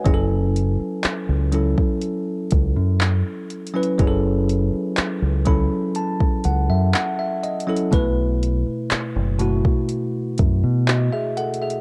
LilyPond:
<<
  \new Staff \with { instrumentName = "Tine electric piano" } { \time 4/4 \key fis \dorian \tempo 4 = 61 << { <b' gis''>16 r2. r8. | r4. b''8 a''8 fis''16 e''16 fis''16 e''16 dis''8 | r2. <fis' dis''>16 <gis' e''>16 <a' fis''>16 <gis' e''>16 | } \\ { <fis cis' e' gis' a'>4~ <fis cis' e' gis' a'>16 r16 <fis cis' e' a'>4. r8. <fis cis' e' b'>16 | <fis cis' e' gis' a'>4~ <fis cis' e' gis' a'>16 r16 <fis cis' e' a'>4. r8. <fis cis' e' a'>16 | <b, a e' b'>4~ <b, a e' b'>16 r16 <b, a e' fis'>4. r4 | } >> }
  \new Staff \with { instrumentName = "Fingered electric bass" } { \clef bass \time 4/4 \key fis \dorian fis,,8. r8 cis,8 r8. cis,16 fis,8 r8. | fis,,8. r8 cis,8 r8. cis,16 fis,16 r4 | b,,8. r8 fis,,8 r8. fis,16 b,8 r8. | }
  \new DrumStaff \with { instrumentName = "Drums" } \drummode { \time 4/4 <hh bd>8 hh8 <hc hh>8 hh16 bd16 hh8 <hh bd>8 \tuplet 3/2 { <hc hh>16 r16 r16 hh16 hh16 hh16 } | <hh bd>8 hh8 <hc hh>8 <hh bd>8 hh16 bd16 hh8 \tuplet 3/2 { <hc hh>16 r16 r16 hh16 hh16 hh16 } | <hh bd>8 hh8 <hc hh>8 hh16 bd16 hh8 <hh bd>8 \tuplet 3/2 { <hc hh>16 r16 r16 hh16 hh16 hh16 } | }
>>